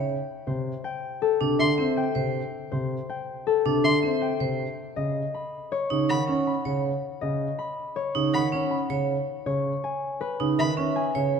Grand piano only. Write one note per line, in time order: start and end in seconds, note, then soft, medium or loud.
0.00 0.15 C#3 soft
0.47 0.71 C3 medium
1.41 1.65 C3 soft
1.59 1.84 D3 soft
1.78 2.02 C4 medium
2.15 2.40 C3 soft
2.73 2.96 C3 medium
3.65 3.90 C3 soft
3.84 4.08 D3 soft
4.03 4.27 C4 medium
4.40 4.65 C3 soft
4.97 5.21 C#3 medium
5.91 6.15 C#3 soft
6.10 6.34 D#3 medium
6.29 6.53 C#4 medium
6.66 6.90 C#3 medium
7.22 7.46 C#3 medium
8.15 8.40 C#3 soft
8.34 8.59 D#3 medium
8.53 8.77 C#4 medium
8.90 9.15 C#3 medium
9.46 9.71 C#3 medium
10.40 10.65 C#3 medium
10.59 10.84 D#3 medium
10.78 11.02 C#4 medium
11.16 11.40 C#3 medium